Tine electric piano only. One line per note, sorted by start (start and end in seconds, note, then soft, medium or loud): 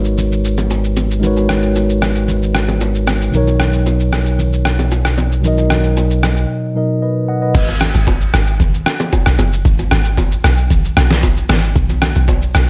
0.00 1.17 G#3 medium
0.00 1.18 D#4 medium
0.00 1.19 F#4 medium
0.00 1.19 A#4 medium
0.00 1.20 B4 medium
0.00 1.21 C#5 medium
1.20 3.28 G#3 medium
1.20 3.29 D#4 medium
1.20 3.29 F#4 medium
1.24 3.30 A#4 medium
1.24 3.31 B4 medium
1.24 3.31 C#5 medium
3.30 5.38 B2 medium
3.30 5.39 F#3 medium
3.30 5.40 D#4 medium
3.35 5.41 A#4 medium
3.35 5.42 C#5 medium
5.41 6.71 B2 medium
5.41 6.72 F#3 medium
5.41 6.73 D#4 medium
5.46 6.74 A#4 medium
5.46 6.75 D#5 medium
6.74 7.54 B2 medium
6.74 7.54 F#3 soft
6.74 7.55 D#4 soft
6.74 7.02 A#4 medium
6.74 7.01 D#5 medium
7.02 7.27 B4 medium
7.02 7.27 D#5 medium
7.28 7.41 D#5 medium
7.28 7.41 F#5 medium
7.42 7.67 B4 medium
7.42 7.67 D#5 medium